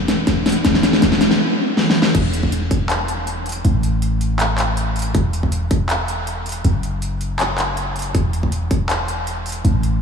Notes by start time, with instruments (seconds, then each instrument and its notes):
0.08 snare, closed hi-hat
0.27 kick, snare, closed hi-hat
0.46 snare, closed hi-hat
0.49 closed hi-hat
0.52 closed hi-hat
0.65 kick, snare, closed hi-hat
0.74 snare
0.83 snare, closed hi-hat
0.93 snare
1.02 kick, snare, closed hi-hat
1.12 snare
1.21 snare, closed hi-hat
1.31 snare
1.77 snare
1.90 snare
2.02 snare
2.15 808-style bass E1, kick, closed hi-hat, crash
2.33 closed hi-hat
2.43 kick
2.52 closed hi-hat
2.71 kick, closed hi-hat
2.90 clap, closed hi-hat
3.08 closed hi-hat
3.27 closed hi-hat
3.46 closed hi-hat
3.49 closed hi-hat
3.52 closed hi-hat
3.65 808-style bass A1, closed hi-hat
3.83 closed hi-hat
4.02 closed hi-hat
4.21 closed hi-hat
4.40 clap, closed hi-hat
4.58 clap, closed hi-hat
4.77 closed hi-hat
4.96 closed hi-hat
4.99 closed hi-hat
5.02 closed hi-hat
5.15 808-style bass E1, kick, closed hi-hat
5.33 closed hi-hat
5.43 kick
5.52 closed hi-hat
5.71 kick, closed hi-hat
5.90 clap, closed hi-hat
6.08 closed hi-hat
6.27 closed hi-hat
6.46 closed hi-hat
6.49 closed hi-hat
6.52 closed hi-hat
6.64 808-style bass F#1, closed hi-hat
6.83 closed hi-hat
7.02 closed hi-hat
7.21 closed hi-hat
7.40 clap, closed hi-hat
7.58 clap, closed hi-hat
7.77 closed hi-hat
7.96 closed hi-hat
7.99 closed hi-hat
8.02 closed hi-hat
8.15 808-style bass E1, kick, closed hi-hat
8.33 closed hi-hat
8.43 kick
8.52 closed hi-hat
8.71 kick, closed hi-hat
8.90 clap, closed hi-hat
9.08 closed hi-hat
9.27 closed hi-hat
9.46 closed hi-hat, open hi-hat
9.52 closed hi-hat
9.65 808-style bass A1, closed hi-hat
9.83 closed hi-hat